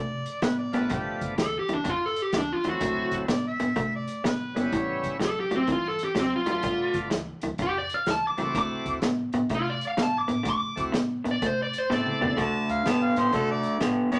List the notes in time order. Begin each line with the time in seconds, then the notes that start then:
Already playing: C3 D3 A3 D5
0.26 closed hi-hat
0.42 A2 D3 B3 B4, snare, closed hi-hat
0.58 D5
0.73 A1 D3 F3 A3 B3 D4 B4, closed hi-hat
0.89 G1 G2 D3 G4, kick, closed hi-hat
1.21 G1, kick, closed hi-hat
1.38 D2 G2 E3 A4, snare, closed hi-hat
1.59 G4
1.69 D2 G2 E3, closed hi-hat
1.73 D4
1.84 F2 G2 D3, kick, closed hi-hat
1.89 F4
2.06 A4
2.16 closed hi-hat
2.22 G4
2.32 D2 G2 E3, snare, closed hi-hat
2.38 D4
2.53 F4
2.64 E2 G2 E3 F#3 A3 C4 E4, closed hi-hat
2.69 F#4
2.81 D2 D3 A3, kick, closed hi-hat
3.12 D2, kick, closed hi-hat
3.28 A2 D3 B3 D5, snare, closed hi-hat
3.47 E5
3.60 A2 D3 B3, closed hi-hat
3.76 C3 D3 A3, kick, closed hi-hat
3.96 D5
4.07 closed hi-hat
4.24 A2 D3 B3 B4, snare, closed hi-hat
4.54 G1 D3 G3 B3 C#4 E4, closed hi-hat
4.72 A1 A2 E3 C#5, kick, closed hi-hat
5.04 A1, kick, closed hi-hat
5.20 E2 A2 F#3, snare, closed hi-hat
5.25 A4
5.40 G4
5.51 E2 A2 F#3, closed hi-hat
5.56 C4
5.67 G2 A2 E3, kick, closed hi-hat
5.72 F4
5.88 A4
5.99 closed hi-hat
6.04 G4
6.15 E2 A2 F#3, snare, closed hi-hat
6.19 C4
6.36 F4
6.46 E2 A2 F#3 A3 B3 D4 F4, closed hi-hat
6.52 F4
6.63 G1 G2 D3, kick, closed hi-hat
6.94 G1, kick, closed hi-hat
7.10 D2 G2 E3, snare, closed hi-hat
7.41 D2 G2 E3, closed hi-hat
7.58 F2 G2 D3 G4, kick, closed hi-hat
7.78 D5
7.89 closed hi-hat
7.94 F5
8.06 D2 G2 E3, snare, closed hi-hat
8.10 A5
8.27 D6
8.37 C#2 G2 E3 A3 C4 E4 F#4, closed hi-hat
8.55 D2 D3 A3 D6, kick, closed hi-hat
8.86 D2, kick, closed hi-hat
9.02 A2 D3 B3, snare, closed hi-hat
9.33 A2 D3 B3, closed hi-hat
9.49 C3 D3 A3, kick, closed hi-hat
9.55 F4
9.70 D5
9.81 closed hi-hat
9.87 F5
9.97 A2 D3 B3, snare, closed hi-hat
10.03 A5
10.18 D6
10.28 A2 D3 B3, closed hi-hat
10.43 D3 A3, kick, closed hi-hat
10.50 D6
10.76 D2 A3 C4 E4 F#4, kick, closed hi-hat
10.92 A2 D3 B3, snare, closed hi-hat
11.24 A2 D3 B3, closed hi-hat
11.31 D5
11.42 C3 D3 A3, kick, closed hi-hat
11.46 C5
11.62 D5
11.73 closed hi-hat
11.78 C5
11.90 A2 D3 A3 B3 C4 E4 A4 D5, snare
12.06 mid tom
12.21 A2 D3 B3, floor tom
12.37 D2 D3 A3 A5, kick, closed hi-hat
12.69 D2 F5, closed hi-hat
12.86 A2 D3 B3 A5, snare, closed hi-hat
13.03 F5
13.16 A2 D3 B3 C5, closed hi-hat
13.33 C3 D3 A3 A4, kick, closed hi-hat
13.51 D5
13.63 closed hi-hat
13.80 A2 D3 B3, snare, closed hi-hat
14.12 A2 D3 B3 D5, closed hi-hat